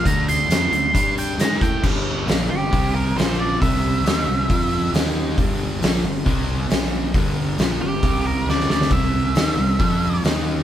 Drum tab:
CC |----------------|x---------------|----------------|----------------|
HH |x-x-x-x-x-x-x-x-|----o---o---o---|o---o---o---o---|o---o---o---o---|
SD |----o-------oo--|----o-------o---|----o-------o---|----o-------oo--|
BD |o-------o-----o-|o-------o-------|o-------o-------|o-------o-------|

CC |----------------|----------------|
HH |o---o---o-------|o---o---o---o---|
SD |----o-------oooo|----o-------o---|
BD |o-------o-------|o-------o-------|